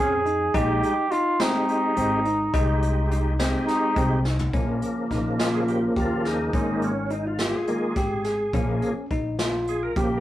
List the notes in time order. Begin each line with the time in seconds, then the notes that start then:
Already playing: F2 C4 C#4 G#4
0.26 D#4, closed hi-hat
0.54 A#1 G#3 D#4 G4, kick, closed hi-hat
0.83 closed hi-hat
1.11 D#4 F4, closed hi-hat
1.40 G#3 C4 D#4 G4, snare, closed hi-hat
1.68 closed hi-hat
1.97 G#1 C4, closed hi-hat
2.25 D#4, closed hi-hat
2.53 C2 G#3 D#4 G4, kick, closed hi-hat
2.82 closed hi-hat
3.11 D#4, closed hi-hat
3.39 G#3 C4 D#4 G4, snare, closed hi-hat
3.67 D#4, snare, closed hi-hat
3.96 C2 C4, kick, closed hi-hat
4.25 D#4, snare
4.39 floor tom
4.53 A#1 C#3 F3 A#3 C#4, kick, closed hi-hat
4.82 closed hi-hat
5.11 A#1 D#4, kick, snare, closed hi-hat
5.39 F4, snare, closed hi-hat
5.54 G#4
5.68 G4, closed hi-hat
5.96 D#2 F4 G4, kick, closed hi-hat
6.25 D#4 G#4, snare, closed hi-hat
6.53 G#1 D#3 G#3 A#3 C#4, kick, closed hi-hat
6.82 C#4, closed hi-hat
7.10 D#4, closed hi-hat
7.27 F4
7.39 F4 G4, snare, closed hi-hat
7.55 G#4
7.67 D#3 G#3 A#3, closed hi-hat
7.96 G#1 G4, kick, snare, closed hi-hat
8.24 G#4, snare, closed hi-hat
8.53 A#1 C#3 F3 A#3 C#4, kick, closed hi-hat
8.82 closed hi-hat
9.10 A#1 D#4, kick, closed hi-hat
9.39 F4, snare, closed hi-hat
9.67 G#4, closed hi-hat
9.83 A#4
9.96 A#1 C#3 F3 A#3 G4, kick, closed hi-hat